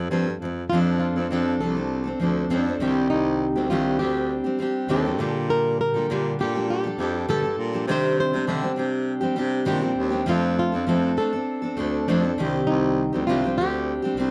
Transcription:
Already playing: nylon-string guitar A4
0.00 steel-string acoustic guitar C4
0.10 baritone saxophone G2, steel-string acoustic guitar F3 C4 F4 A4
0.26 steel-string acoustic guitar F3
0.40 baritone saxophone F2, steel-string acoustic guitar F3
0.45 steel-string acoustic guitar C4
0.70 baritone saxophone F2, steel-string acoustic guitar F3 C4 D4, nylon-string guitar F4
0.75 steel-string acoustic guitar A4
1.00 nylon-string guitar F4
1.15 baritone saxophone F2, steel-string acoustic guitar C4 D4 A4
1.30 baritone saxophone F2, steel-string acoustic guitar F3 C4 D4 A4
1.60 baritone saxophone C2, steel-string acoustic guitar F3 C4 D4 A4, nylon-string guitar A4
1.75 steel-string acoustic guitar C4 D4 A4
2.04 steel-string acoustic guitar C4 D4 A4
2.20 baritone saxophone D2, steel-string acoustic guitar F3 C4 D4 A4
2.50 baritone saxophone F2, steel-string acoustic guitar F3 C4 D4 A4, nylon-string guitar D4
2.66 steel-string acoustic guitar C4 D4 A4
2.80 baritone saxophone C2, steel-string acoustic guitar C3 D#3 G3 C4 G4
3.10 baritone saxophone C2, nylon-string guitar D#4
3.55 baritone saxophone D2, steel-string acoustic guitar G3 C4 D4 G4
3.70 baritone saxophone C2, steel-string acoustic guitar C3 D#3 G3 C4 D4 G4, nylon-string guitar F4
3.99 baritone saxophone D2, steel-string acoustic guitar G3 C4 D4 G4, nylon-string guitar G4
4.44 steel-string acoustic guitar G3 C4 D4 G4
4.59 steel-string acoustic guitar G3 C4 D4 G4
4.88 baritone saxophone D#2, steel-string acoustic guitar C3 D#3 G3 C4 D4 G4, nylon-string guitar A4
5.05 steel-string acoustic guitar G3 C4 D4 G4
5.19 steel-string acoustic guitar A#2 D3 G3 D4 G4, baritone saxophone A#2
5.38 nylon-string guitar G4
5.50 nylon-string guitar A#4
5.81 nylon-string guitar A#4
5.94 baritone saxophone A#2, steel-string acoustic guitar G3 D4 G4 A4
6.09 baritone saxophone A#2, steel-string acoustic guitar A#2 D3 G3 D4 G4
6.39 baritone saxophone A#2, steel-string acoustic guitar G3 D4 G4 A4, nylon-string guitar G4
6.55 steel-string acoustic guitar G3 D4 G4 A4
6.70 nylon-string guitar G4
6.84 steel-string acoustic guitar G3 D4 G4 A4
6.98 baritone saxophone F2, steel-string acoustic guitar G3 D4 G4
7.02 steel-string acoustic guitar A4
7.17 nylon-string guitar F4
7.28 baritone saxophone G2, steel-string acoustic guitar A#2 D3 G3 D4 G4 A4, nylon-string guitar A4
7.42 steel-string acoustic guitar G3 D4 G4 A4
7.58 baritone saxophone A#2
7.73 steel-string acoustic guitar G3 D4 G4 A4
7.87 baritone saxophone C3, steel-string acoustic guitar C3 D#3 G3 C4 D4 G4, nylon-string guitar C5
8.20 nylon-string guitar C5
8.33 baritone saxophone C3, steel-string acoustic guitar G3 C4 D4 G4
8.47 steel-string acoustic guitar C3 D#3 G3 C4 D4 G4, baritone saxophone D3
8.61 steel-string acoustic guitar G3 C4 D4 G4
8.76 baritone saxophone C3, steel-string acoustic guitar G3 C4 D4 G4
9.21 steel-string acoustic guitar C4 D4 G4
9.25 steel-string acoustic guitar G3
9.36 baritone saxophone C3, steel-string acoustic guitar G3 C4 D4 G4
9.65 baritone saxophone A#2, steel-string acoustic guitar C3 D#3 G3 C4 D4 G4
9.81 steel-string acoustic guitar G3 C4 D4 G4
9.98 baritone saxophone D#2
10.10 steel-string acoustic guitar G3 C4 D4 G4
10.26 baritone saxophone F2, steel-string acoustic guitar F3 A3 C4 D4 A4, nylon-string guitar F4
10.59 nylon-string guitar F4
10.72 baritone saxophone F2, steel-string acoustic guitar C4 D4 A4
10.87 baritone saxophone F2, steel-string acoustic guitar F3 A3 C4 D4 A4
11.17 steel-string acoustic guitar A3 C4 D4 A4, nylon-string guitar A4
11.33 steel-string acoustic guitar C4 D4 A4
11.62 steel-string acoustic guitar C4 D4 A4
11.77 baritone saxophone D2, steel-string acoustic guitar A3 C4 D4 A4
12.08 baritone saxophone F2, steel-string acoustic guitar F3 A3 C4 D4 A4, nylon-string guitar D4
12.23 steel-string acoustic guitar C4 D4 A4
12.38 baritone saxophone C2, steel-string acoustic guitar C3 D#3 G3 C4 G4
12.67 baritone saxophone C2, nylon-string guitar D#4
13.13 baritone saxophone D2, steel-string acoustic guitar G3 C4 D4 G4
13.27 baritone saxophone C2, steel-string acoustic guitar C3 D#3 G3 C4 D4 G4, nylon-string guitar F4
13.44 steel-string acoustic guitar G3 C4 D4 G4
13.58 baritone saxophone D2, steel-string acoustic guitar G3 C4 D4 G4, nylon-string guitar G4
14.02 steel-string acoustic guitar G3 C4 D4 G4
14.17 baritone saxophone C2, steel-string acoustic guitar G3 C4 D4 G4

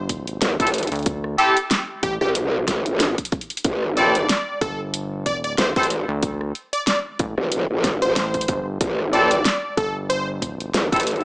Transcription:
Already playing: analog synth bass G1
0.09 kick, closed hi-hat
0.27 closed hi-hat
0.42 wobble bass E2, snare, closed hi-hat
0.60 wobble bass A1, horn section C4 E4 G4 A4, kick, closed hi-hat
0.67 closed hi-hat
0.74 closed hi-hat
0.78 closed hi-hat
0.83 closed hi-hat
0.87 closed hi-hat
0.92 analog synth bass D2, closed hi-hat
0.96 closed hi-hat
0.99 closed hi-hat
1.03 closed hi-hat
1.06 kick, closed hi-hat
1.24 cross-stick
1.38 horn section C4 E4 G4 A4, digital synth lead G4, closed hi-hat
1.57 closed hi-hat
1.71 snare, closed hi-hat
2.03 analog synth bass A1, digital synth lead G4, kick, closed hi-hat
2.21 wobble bass C2, digital synth lead G4, cross-stick
2.35 closed hi-hat
2.68 wobble bass A1, kick, cross-stick, snare, closed hi-hat
2.86 closed hi-hat
3.00 snare, closed hi-hat
3.18 kick, closed hi-hat
3.25 closed hi-hat
3.32 kick, closed hi-hat
3.41 closed hi-hat
3.50 closed hi-hat
3.57 closed hi-hat
3.64 wobble bass A1, kick, closed hi-hat
3.83 cross-stick
3.97 horn section C4 E4 G4 A4, digital synth lead D5, closed hi-hat
4.15 closed hi-hat
4.29 snare, closed hi-hat
4.61 analog synth bass G1, digital synth lead A4, kick, closed hi-hat
4.94 closed hi-hat
5.26 digital synth lead D5, kick, closed hi-hat
5.44 digital synth lead D5, closed hi-hat
5.58 wobble bass E2, digital synth lead C5, snare, closed hi-hat
5.76 wobble bass A1, horn section C4 E4 G4 A4, digital synth lead C5, kick, closed hi-hat
5.83 closed hi-hat
5.90 closed hi-hat
6.09 analog synth bass D2
6.23 kick, closed hi-hat
6.41 cross-stick
6.55 closed hi-hat
6.73 digital synth lead D5, closed hi-hat
6.87 digital synth lead D5, snare, closed hi-hat
7.19 analog synth bass A1, kick, closed hi-hat
7.38 wobble bass A1, cross-stick
7.52 closed hi-hat
7.70 wobble bass A1
7.84 kick, cross-stick, snare, closed hi-hat
8.02 digital synth lead C5, closed hi-hat
8.16 analog synth bass A1, snare, closed hi-hat
8.34 kick, closed hi-hat
8.41 closed hi-hat
8.48 analog synth bass G1, kick, closed hi-hat
8.81 wobble bass A1, kick, closed hi-hat
8.99 cross-stick
9.13 horn section C4 E4 G4 A4, digital synth lead D5, closed hi-hat
9.31 closed hi-hat
9.45 snare, closed hi-hat
9.77 analog synth bass G1, digital synth lead A4, kick, closed hi-hat
10.10 digital synth lead C5, closed hi-hat
10.42 kick, closed hi-hat
10.60 closed hi-hat
10.74 wobble bass E2, snare, closed hi-hat
10.92 wobble bass A1, horn section C4 E4 G4 A4, kick, closed hi-hat
10.96 closed hi-hat
11.00 closed hi-hat
11.03 closed hi-hat
11.07 closed hi-hat
11.16 closed hi-hat
11.21 closed hi-hat

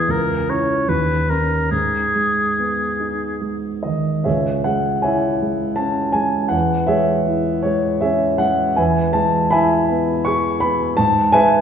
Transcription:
Already playing: grand piano E2 B3 E4, oboe G#4
0.08 grand piano C#2, oboe A#4
0.49 grand piano C#4 E4, oboe C#5
0.88 grand piano D#2, oboe B4
1.30 grand piano C#4 D#4, oboe A#4
1.71 grand piano G#2, oboe G#4
2.15 grand piano G#3
2.58 grand piano B3
3.00 grand piano D#4
3.41 grand piano G#3
3.83 grand piano D#3 D#5
4.24 grand piano C#2 G#4 C#5 E5
4.64 grand piano G#3 F#5
5.02 grand piano E4 C#5 E5 G#5
5.42 grand piano G#3
5.76 grand piano C#4 A5
6.13 grand piano G#3 G#5
6.49 grand piano E2 F#5
6.87 grand piano G#3 G#4 C#5 E5
7.27 grand piano E4
7.63 grand piano G#3 C#5
8.01 grand piano C#4 G#4 C#5 E5
8.38 grand piano G#3 F#5
8.76 grand piano E2 B4 E5 G#5
9.13 grand piano G#3 A5
9.50 grand piano E4 E5 G#5 B5
9.90 grand piano B3
10.25 grand piano G#4 C#6
10.60 grand piano B3 B5
10.97 grand piano G#2 A5
11.32 grand piano G#3 B4 E5 G#5

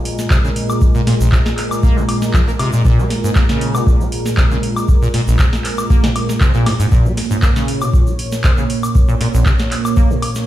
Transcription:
Already playing: analog synth pad A#2 G#3 A#4
0.05 open hi-hat
0.19 snare, shaker
0.30 acid bass C3, kick, clap, shaker
0.44 acid bass C#3, shaker
0.56 open hi-hat
0.70 high woodblock, shaker
0.81 kick, shaker
0.95 acid bass A#2, shaker
1.07 acid bass A#2, snare, open hi-hat
1.20 acid bass A#1, shaker
1.32 acid bass C3, kick, clap, shaker
1.46 snare, shaker
1.57 clap, open hi-hat
1.71 high woodblock, shaker
1.83 acid bass A#3, kick, shaker
1.97 acid bass A#2, shaker
2.09 open hi-hat, high woodblock
2.22 snare, shaker
2.34 acid bass F3, kick, clap, shaker
2.48 acid bass A#3, shaker
2.59 acid bass C3, open hi-hat, high woodblock
2.73 acid bass A#2, shaker
2.85 acid bass A#2, kick, shaker
2.98 acid bass G#3, shaker
3.10 snare, open hi-hat
3.24 acid bass G#2, shaker
3.35 acid bass A#3, kick, clap, shaker
3.49 acid bass C#3, snare, shaker
3.61 open hi-hat
3.75 acid bass A#2, high woodblock, shaker
3.87 kick, shaker
4.00 acid bass G#3, shaker
4.12 open hi-hat
4.26 snare, shaker
4.37 acid bass C3, kick, clap, shaker
4.51 acid bass C#3, shaker
4.63 open hi-hat
4.76 high woodblock, shaker
4.88 kick, shaker
5.02 acid bass A#2, shaker
5.14 acid bass A#2, snare, open hi-hat
5.27 acid bass A#1, shaker
5.39 acid bass C3, kick, clap, shaker
5.53 snare, shaker
5.64 clap, open hi-hat
5.78 high woodblock, shaker
5.90 acid bass A#3, kick, shaker
6.04 acid bass A#2, snare, shaker
6.16 open hi-hat, high woodblock
6.29 snare, shaker
6.41 acid bass C3, kick, clap, shaker
6.54 acid bass A#2, shaker
6.66 acid bass G#2, snare, open hi-hat, high woodblock
6.80 acid bass G#2, open hi-hat, shaker
6.92 acid bass A#2, analog synth pad A#3 C#5, kick, shaker
7.05 acid bass G#3, shaker
7.17 snare, open hi-hat
7.31 acid bass G#2, shaker
7.42 acid bass A#3, kick, clap, shaker
7.56 acid bass C#3, snare, shaker
7.68 open hi-hat
7.81 acid bass A#2, high woodblock, shaker
7.94 kick, shaker
8.07 acid bass G#3, shaker
8.19 open hi-hat
8.32 snare, shaker
8.44 acid bass C3, kick, clap, shaker
8.57 acid bass C#3, shaker
8.70 open hi-hat
8.83 high woodblock, shaker
8.95 kick, shaker
9.09 acid bass A#2, shaker
9.21 acid bass A#2, snare, open hi-hat
9.34 acid bass A#1, shaker
9.46 acid bass C3, kick, clap, shaker
9.59 snare, shaker
9.71 clap, open hi-hat
9.85 high woodblock, shaker
9.97 acid bass A#3, kick, shaker
10.10 acid bass A#2, shaker
10.22 open hi-hat, high woodblock
10.35 snare, shaker

